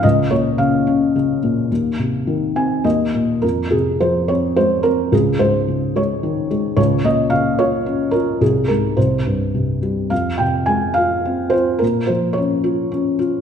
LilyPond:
<<
  \new Staff \with { instrumentName = "Felt piano" } { \time 3/4 \key aes \major \tempo 4 = 107 << { r2. | r4. aes''8 ees''4 | \key f \minor r2. | r2. |
r2. | r2. | r2. | r2. | } \\ { ees''8 des''8 f''2~ | f''2 r4 | bes'8 aes'8 c''8 des''8 c''8 bes'8 | aes'8 c''4 des''4 r8 |
des''8 ees''8 f''8 des''4 bes'8 | aes'8 bes'8 c''4. r8 | f''8 g''8 aes''8 f''4 c''8 | bes'8 c''8 des''4. r8 | } >> }
  \new Staff \with { instrumentName = "Felt piano" } { \clef bass \time 3/4 \key aes \major des,8 bes,8 des8 des'8 des8 bes,8 | ees,8 c8 ees8 c'8 ees,8 bes,8 | \key f \minor f,8 c8 f8 c'8 aes8 c'8 | des,8 aes,8 des8 aes8 ees8 aes8 |
des,8 bes,8 des8 f'8 des'8 f'8 | c,8 aes,8 c,8 g,8 c8 g8 | f,8 c8 aes8 f'8 c'8 f'8 | bes,8 f8 des'8 f'8 des'8 f'8 | }
>>